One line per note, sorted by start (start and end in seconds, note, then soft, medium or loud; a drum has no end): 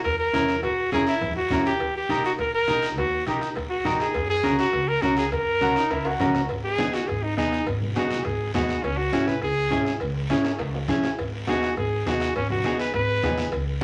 0.04 0.28 E2 medium
0.04 0.18 A#4 medium
0.04 bombo low medium
0.04 bombo rim medium
0.04 cowbell medium
0.04 high conga soft
0.04 long guiro medium
0.18 0.60 A#4 medium
0.33 0.65 E2 medium
0.33 0.54 C#4 medium
0.33 0.54 E4 medium
0.33 0.55 A#4 medium
0.33 bombo rim medium
0.33 high conga medium
0.33 low timbale medium
0.33 short guiro medium
0.49 bombo rim medium
0.49 short guiro medium
0.63 0.87 A#1 medium
0.63 0.90 F#4 medium
0.63 bombo low medium
0.63 bombo rim medium
0.63 cowbell loud
0.63 high conga soft
0.63 long guiro medium
0.92 1.04 E2 medium
0.92 1.13 C#4 medium
0.92 1.14 E4 medium
0.92 1.06 G#4 medium
0.92 1.14 A#4 medium
0.92 bombo rim medium
0.92 high conga medium
0.92 short guiro medium
1.07 1.35 E4 loud
1.07 bombo rim medium
1.07 short guiro medium
1.21 1.45 E2 medium
1.21 bombo low medium
1.21 bombo rim medium
1.21 cowbell medium
1.21 high conga soft
1.21 low conga medium
1.21 long guiro medium
1.37 1.64 F#4 medium
1.50 1.81 E2 medium
1.50 1.72 C#4 medium
1.50 1.72 E4 medium
1.50 1.72 A#4 medium
1.50 bombo low medium
1.50 bombo rim medium
1.50 high conga medium
1.50 low conga medium
1.50 low timbale medium
1.50 short guiro medium
1.66 1.93 G4 loud
1.66 bombo rim medium
1.66 short guiro medium
1.80 2.04 D#2 loud
1.80 bombo low medium
1.80 bombo rim medium
1.80 cowbell medium
1.80 high conga soft
1.80 long guiro medium
1.97 2.23 G4 medium
2.09 2.21 A#1 medium
2.09 2.30 D#4 medium
2.09 2.30 G4 medium
2.09 2.31 A#4 medium
2.09 bombo rim medium
2.09 high conga medium
2.09 short guiro medium
2.24 2.32 F#4 medium
2.24 bombo rim medium
2.24 short guiro medium
2.38 2.63 A#1 medium
2.38 2.53 A#4 medium
2.38 bombo low medium
2.38 bombo rim medium
2.38 cowbell medium
2.38 high conga soft
2.38 long guiro medium
2.55 2.86 A#4 loud
2.68 2.98 A#1 medium
2.68 2.89 D#4 medium
2.68 2.89 G4 medium
2.68 2.89 A#4 medium
2.68 bombo rim medium
2.68 high conga medium
2.68 short guiro medium
2.82 bombo rim medium
2.82 short guiro medium
2.98 3.21 D#2 loud
2.98 3.25 F#4 medium
2.98 bombo low medium
2.98 bombo rim medium
2.98 cowbell loud
2.98 high conga soft
2.98 long guiro medium
3.26 3.39 A#1 medium
3.26 3.48 D#4 medium
3.26 3.40 G4 medium
3.26 3.48 G4 medium
3.26 3.48 A#4 medium
3.26 bombo rim medium
3.26 high conga medium
3.26 short guiro medium
3.41 bombo rim medium
3.41 short guiro medium
3.56 3.80 A#1 medium
3.56 bombo low medium
3.56 bombo rim loud
3.56 cowbell medium
3.56 high conga soft
3.56 long guiro medium
3.70 4.01 F#4 medium
3.85 4.16 A#1 medium
3.85 4.06 D#4 medium
3.85 4.06 G4 medium
3.85 4.06 A#4 medium
3.85 bombo low medium
3.85 bombo rim medium
3.85 high conga medium
3.85 low conga medium
3.85 low timbale medium
3.85 short guiro medium
4.00 4.29 G#4 medium
4.00 bombo rim medium
4.00 short guiro medium
4.14 4.39 F#2 loud
4.14 bombo low medium
4.14 bombo rim medium
4.14 cowbell loud
4.14 high conga soft
4.14 long guiro medium
4.30 4.57 G#4 loud
4.43 4.56 C#2 medium
4.43 4.65 C#4 medium
4.43 4.65 F#4 medium
4.43 4.65 A#4 medium
4.43 bombo rim medium
4.43 high conga medium
4.43 short guiro medium
4.59 4.90 F#4 loud
4.59 bombo rim medium
4.59 short guiro medium
4.73 4.97 C#2 medium
4.73 bombo low medium
4.73 bombo rim medium
4.73 cowbell medium
4.73 high conga soft
4.73 long guiro medium
4.88 5.04 A#4 loud
5.02 5.34 C#2 medium
5.02 5.23 C#4 medium
5.02 5.17 F#4 medium
5.02 5.23 F#4 medium
5.02 5.24 A#4 medium
5.02 bombo rim medium
5.02 high conga medium
5.02 low timbale medium
5.02 short guiro medium
5.17 5.32 G#4 medium
5.17 bombo rim medium
5.17 short guiro medium
5.32 5.56 F#2 medium
5.32 6.16 A#4 loud
5.32 bombo low medium
5.32 bombo rim medium
5.32 cowbell loud
5.32 high conga soft
5.32 long guiro medium
5.61 5.73 C#2 medium
5.61 5.82 C#4 medium
5.61 5.82 F#4 medium
5.61 5.78 F#4 loud
5.61 5.82 A#4 medium
5.61 bombo rim medium
5.61 high conga medium
5.61 short guiro medium
5.76 5.92 D#4 loud
5.76 bombo rim medium
5.76 short guiro medium
5.90 6.14 C#2 medium
5.90 6.07 E4 loud
5.90 bombo low medium
5.90 bombo rim medium
5.90 cowbell medium
5.90 high conga soft
5.90 high timbale medium
5.90 long guiro medium
6.05 6.50 F#4 loud
6.05 high timbale medium
6.20 6.44 C#2 medium
6.20 6.41 C#4 medium
6.20 6.41 F#4 medium
6.20 6.41 A#4 medium
6.20 bombo rim medium
6.20 high conga medium
6.20 low conga medium
6.20 low timbale medium
6.20 short guiro medium
6.35 bombo rim medium
6.35 low timbale medium
6.35 short guiro medium
6.49 6.73 G#1 medium
6.49 bombo low medium
6.49 bombo rim medium
6.49 cowbell loud
6.49 high conga soft
6.49 long guiro medium
6.64 6.95 G#4 loud
6.78 7.02 D#2 medium
6.78 7.00 B3 medium
6.78 7.00 D#4 medium
6.78 7.00 G#4 medium
6.78 bombo rim medium
6.78 high conga medium
6.78 short guiro medium
6.94 7.09 F#4 medium
6.94 bombo rim medium
6.94 short guiro medium
7.08 7.32 G#1 loud
7.08 7.25 G#4 medium
7.08 bombo low medium
7.08 bombo rim medium
7.08 cowbell medium
7.08 high conga soft
7.08 long guiro medium
7.23 7.37 D#4 medium
7.37 7.61 D#2 loud
7.37 7.58 B3 medium
7.37 7.66 D#4 loud
7.37 7.58 D#4 medium
7.37 7.58 G#4 medium
7.37 bombo rim medium
7.37 high conga medium
7.37 short guiro medium
7.52 bombo rim medium
7.52 short guiro medium
7.67 7.90 G#1 loud
7.67 bombo low medium
7.67 bombo rim medium
7.67 cowbell loud
7.67 high conga soft
7.67 long guiro medium
7.82 high conga medium
7.96 8.19 D#2 medium
7.96 8.17 B3 medium
7.96 8.17 D#4 medium
7.96 8.26 F#4 medium
7.96 8.17 G#4 medium
7.96 bombo rim medium
7.96 high conga medium
7.96 short guiro medium
8.10 bombo rim medium
8.10 high conga medium
8.10 short guiro medium
8.24 8.49 G#1 loud
8.24 8.53 G#4 medium
8.24 bombo low medium
8.24 bombo rim medium
8.24 cowbell medium
8.24 high conga soft
8.24 long guiro medium
8.54 8.78 D#2 loud
8.54 8.75 B3 medium
8.54 8.75 D#4 medium
8.54 8.84 F#4 medium
8.54 8.75 G#4 medium
8.54 bombo low medium
8.54 bombo rim medium
8.54 high conga medium
8.54 low conga medium
8.54 low timbale medium
8.54 short guiro medium
8.69 bombo rim medium
8.69 short guiro medium
8.83 9.07 C#2 medium
8.83 8.99 C#4 medium
8.83 bombo low medium
8.83 bombo rim medium
8.83 cowbell loud
8.83 high conga soft
8.83 long guiro medium
8.98 9.29 F#4 medium
9.12 9.37 G#1 medium
9.12 9.33 C#4 medium
9.12 9.34 E4 medium
9.12 9.34 G#4 medium
9.12 bombo rim medium
9.12 high conga medium
9.12 short guiro medium
9.27 9.42 B4 medium
9.27 bombo rim medium
9.27 high conga medium
9.27 short guiro medium
9.42 9.66 C#2 loud
9.42 10.00 G#4 loud
9.42 bombo low medium
9.42 bombo rim medium
9.42 cowbell medium
9.42 high conga soft
9.42 long guiro medium
9.70 9.95 G#1 medium
9.70 9.92 C#4 medium
9.70 9.92 E4 medium
9.70 9.92 G#4 medium
9.70 bombo low medium
9.70 bombo rim medium
9.70 high conga medium
9.70 low timbale medium
9.70 short guiro medium
9.85 bombo rim medium
9.85 short guiro medium
10.00 10.24 C#2 loud
10.00 bombo low medium
10.00 bombo rim medium
10.00 cowbell loud
10.00 high conga soft
10.00 long guiro medium
10.30 10.54 G#1 medium
10.30 10.51 C#4 medium
10.30 10.51 E4 medium
10.30 10.51 G#4 medium
10.30 bombo rim medium
10.30 high conga medium
10.30 short guiro medium
10.44 bombo rim medium
10.44 high timbale medium
10.44 short guiro medium
10.59 10.83 C#2 medium
10.59 bombo low medium
10.59 bombo rim medium
10.59 cowbell medium
10.59 high conga soft
10.59 high timbale medium
10.59 long guiro medium
10.74 low timbale medium
10.88 11.12 A#1 loud
10.88 11.09 C#4 medium
10.88 11.09 E4 medium
10.88 11.10 G#4 medium
10.88 bombo rim medium
10.88 high conga medium
10.88 low conga medium
10.88 short guiro medium
11.03 bombo rim medium
11.03 low timbale medium
11.03 short guiro medium
11.18 11.42 G#1 medium
11.18 bombo low medium
11.18 bombo rim medium
11.18 cowbell loud
11.18 high conga soft
11.18 long guiro medium
11.47 11.71 D#2 medium
11.47 11.68 B3 medium
11.47 11.69 D#4 medium
11.47 11.76 F#4 medium
11.47 11.69 G#4 medium
11.47 bombo rim medium
11.47 high conga medium
11.47 short guiro medium
11.63 bombo rim medium
11.63 short guiro medium
11.77 12.00 G#1 loud
11.77 12.09 G#4 medium
11.77 bombo low medium
11.77 bombo rim medium
11.77 cowbell medium
11.77 high conga soft
11.77 long guiro medium
12.06 12.30 D#2 medium
12.06 12.27 B3 medium
12.06 12.27 D#4 medium
12.06 12.35 F#4 medium
12.06 12.27 G#4 medium
12.06 bombo rim medium
12.06 high conga medium
12.06 low timbale medium
12.06 short guiro medium
12.20 bombo rim medium
12.20 short guiro medium
12.35 12.59 G#1 medium
12.35 12.50 C#4 medium
12.35 bombo low medium
12.35 bombo rim medium
12.35 cowbell loud
12.35 high conga soft
12.35 long guiro medium
12.50 12.78 F#4 medium
12.50 high conga medium
12.50 low conga medium
12.64 12.88 D#2 medium
12.64 12.85 B3 medium
12.64 12.86 D#4 medium
12.64 12.86 G#4 medium
12.64 bombo rim medium
12.64 high conga medium
12.64 short guiro medium
12.79 12.94 B4 medium
12.79 bombo rim medium
12.79 short guiro medium
12.94 13.17 G#1 loud
12.94 13.51 B4 loud
12.94 bombo low medium
12.94 bombo rim medium
12.94 cowbell medium
12.94 high conga soft
12.94 long guiro medium
13.22 13.46 D#2 loud
13.22 13.44 B3 medium
13.22 13.44 D#4 medium
13.22 13.44 G#4 medium
13.22 bombo rim medium
13.22 high conga medium
13.22 low conga medium
13.22 low timbale medium
13.22 short guiro medium
13.38 bombo rim medium
13.38 short guiro medium
13.52 13.76 C#2 loud
13.52 bombo low medium
13.52 bombo rim medium
13.52 cowbell loud
13.52 high conga soft
13.52 long guiro medium